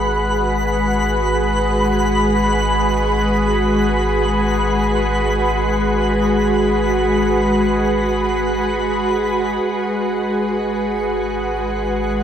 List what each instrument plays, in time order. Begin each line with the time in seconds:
Already playing: sub bass G#1, ambient pad G#3 F#4 G#4 B4 F#5, synth texture B5
9.62 sub bass G#1, synth texture F#5